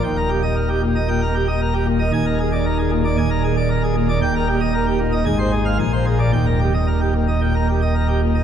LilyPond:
<<
  \new Staff \with { instrumentName = "Pipe organ" } { \time 4/4 \key ees \major \tempo 4 = 114 g''16 bes'16 g'16 ees''16 bes'16 g'16 bes,16 ees''16 g''16 bes'16 g'16 ees''16 bes'16 g'16 bes,16 ees''16 | aes''16 bes'16 aes'16 d''16 bes'16 aes'16 bes,16 d''16 aes''16 bes'16 aes'16 d''16 bes'16 aes'16 bes,16 d''16 | g''16 bes'16 g'16 ees''16 bes'16 g'16 bes,16 ees''16 aes''16 c''16 aes'16 f''16 aes''16 c''16 aes'16 d''16 | g''16 bes'16 g'16 ees''16 bes'16 g'16 bes,16 ees''16 g''16 bes'16 g'16 ees''16 bes'16 g'16 bes,16 ees''16 | }
  \new Staff \with { instrumentName = "Pipe organ" } { \clef bass \time 4/4 \key ees \major << { ees,2 bes,16 r4. r16 | ees,2 ees,2 | ees,2 aes,4 bes,4 | ees,2 bes,16 r4. r16 | } \\ { ees,,1 | ees,,2 ees,,2 | ees,,2 aes,,4 bes,,4 | ees,,1 | } >> }
>>